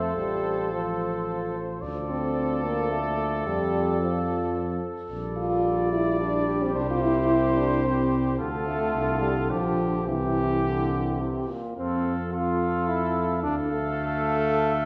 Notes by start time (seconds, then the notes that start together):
Already playing: F2 F3 A3 A4 C5
0.16 A1 G3
0.72 F3
1.81 D2 F3 A4 D5
2.09 C4
2.63 A#3
2.91 A3
3.46 F2 G3
4.00 F3
5.10 A#1 G3 D5
5.37 F4
5.92 E4
6.19 D4 G4
6.62 C4
6.74 C2 D4 C5
6.90 F4
7.02 E4
7.56 D4
7.84 C4
8.38 D2 D3 F4 A4
8.66 A3
8.94 C2
9.22 G3
9.50 A#1 D3 F3 G4
10.07 C2 C3 E3 G4
10.64 D3
11.21 C3
11.49 A#2
11.76 F2 C4 A4 F5
12.32 F4 A4 F5
12.88 E4
13.43 D2 D4 A4 F5
13.70 A3